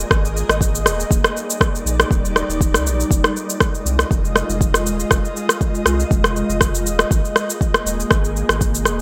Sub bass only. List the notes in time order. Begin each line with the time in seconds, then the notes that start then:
0.11 G#1
0.49 G#1
0.86 D#1
1.11 D#1
1.85 A#1
2.11 D#1
2.49 D#1
2.74 D#2
2.85 A#1
3.11 F1
3.85 C2
4.11 F1
4.49 F1
4.86 D#1
5.11 F1
5.86 C2
6.11 F1
6.49 F1
6.86 D#1
7.11 G#1
7.86 D#1
8.11 G#1
8.49 G#1
8.86 D#1